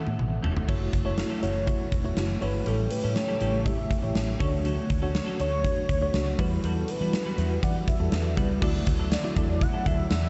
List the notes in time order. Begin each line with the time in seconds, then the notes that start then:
Already playing: A2 C#4 E4 A4 E5 F#5
0.06 A2, muted clean electric guitar stroke, high tom
0.18 A1, muted clean electric guitar stroke, mid tom
0.30 muted clean electric guitar stroke
0.43 E1 A3 C#4 E4 A4, floor tom
0.55 muted clean electric guitar stroke, floor tom
0.67 F#1 E3 A3 C#4 E4 F#4 A4 C#5, kick, crash
0.79 muted clean electric guitar stroke
0.92 F#1, muted clean electric guitar stroke, kick, closed hi-hat
1.04 A3 C#4 E4 F#4 A4 C#5
1.17 muted clean electric guitar stroke, snare, closed hi-hat
1.30 A3 C#4 E4 A4
1.42 F#1 A3 C#4 E4 F#4 A4 C#5, closed hi-hat
1.55 muted clean electric guitar stroke
1.67 A3 E4 F#4 C#5, muted clean electric guitar stroke, kick, closed hi-hat
1.80 muted clean electric guitar stroke
1.92 E1, kick, closed hi-hat
2.04 A3 E4 F#4 C#5, muted clean electric guitar stroke
2.17 F#1, snare, closed hi-hat
2.29 muted clean electric guitar stroke
2.41 G1 A3 C#4 E4 F#4 A4 B4 C#5, open hi-hat
2.54 muted clean electric guitar stroke
2.65 A1 A2 C#3 G3 A3 C#4 E4 G4 A4 C#5, closed hi-hat
2.78 muted clean electric guitar stroke
2.91 B4, muted clean electric guitar stroke, closed hi-hat
3.02 A2 G3 A3 C#4 E4 G4 A4 C#5
3.16 C#5, muted clean electric guitar stroke, snare, closed hi-hat
3.28 G3 C#4 E4 A4
3.40 A1 G3 A3 C#4 E4 G4 A4 C#5, closed hi-hat
3.54 muted clean electric guitar stroke
3.65 A2 A3 E4 G4 E5, muted clean electric guitar stroke, kick, closed hi-hat
3.78 muted clean electric guitar stroke
3.91 kick, closed hi-hat
4.02 A1 A3 E4 G4 C#5, muted clean electric guitar stroke
4.15 A1, snare, closed hi-hat
4.27 muted clean electric guitar stroke
4.39 D2 D3 A3 C#4 D4 F#4 A4 C#5, kick, open hi-hat
4.52 muted clean electric guitar stroke
4.65 A3 C#4 F#4 A4, closed hi-hat
4.78 muted clean electric guitar stroke
4.90 D2, muted clean electric guitar stroke, kick, closed hi-hat
5.01 A3 C#4 D4 F#4 A4 C#5
5.15 muted clean electric guitar stroke, snare, closed hi-hat
5.27 A3 C#4 F#4 A4
5.39 D2 A3 C#4 D4 F#4 A4 C#5, closed hi-hat
5.51 muted clean electric guitar stroke
5.63 A3 D4 F#4 C#5, muted clean electric guitar stroke, kick, closed hi-hat
5.76 muted clean electric guitar stroke
5.89 D2, kick, closed hi-hat
6.01 A3 D4 F#4 C#5, muted clean electric guitar stroke
6.14 C#2, snare, closed hi-hat
6.26 muted clean electric guitar stroke
6.38 E2 E3 G3 B3 E4 F#4 B4, kick, open hi-hat
6.52 muted clean electric guitar stroke
6.64 E2 G3 B3 F#4 A4 B4, closed hi-hat
6.76 muted clean electric guitar stroke
6.88 B4, muted clean electric guitar stroke, closed hi-hat
7.00 E3 G3 B3 E4 F#4 B4
7.13 muted clean electric guitar stroke, snare, closed hi-hat
7.26 G3 B3 F#4 B4
7.37 E2 G3 B3 E4 F#4 B4, closed hi-hat
7.51 muted clean electric guitar stroke
7.62 E3 G3 E4 F#4 D5 F#5, muted clean electric guitar stroke, kick, closed hi-hat
7.75 muted clean electric guitar stroke
7.88 E5, kick, closed hi-hat
7.99 E2 G3 E4 F#4 A4, muted clean electric guitar stroke
8.12 E2, snare, closed hi-hat
8.25 muted clean electric guitar stroke
8.37 C#2 G3 B3 E4 F#4 B4, kick, closed hi-hat
8.50 muted clean electric guitar stroke
8.61 D2 D3 F#3 A3 D4 E4 F#4 A4 D5, kick, crash
8.75 muted clean electric guitar stroke
8.87 D2, muted clean electric guitar stroke, kick, closed hi-hat
8.99 F#3 D4 E4 A4
9.12 D5, muted clean electric guitar stroke, snare, closed hi-hat, tambourine
9.24 A3 E4 F#4 D5, muted clean electric guitar stroke
9.36 E2 F#3 A3 D4 E4 F#4 A4 D5, kick, closed hi-hat
9.49 muted clean electric guitar stroke
9.61 F#5, muted clean electric guitar stroke, kick, closed hi-hat
9.73 F#3 D4 E4 A4
9.86 D2 F#3 D4 E4 A4 E5, kick, closed hi-hat
9.98 muted clean electric guitar stroke
10.11 E2, muted clean electric guitar stroke, snare, closed hi-hat, tambourine
10.24 muted clean electric guitar stroke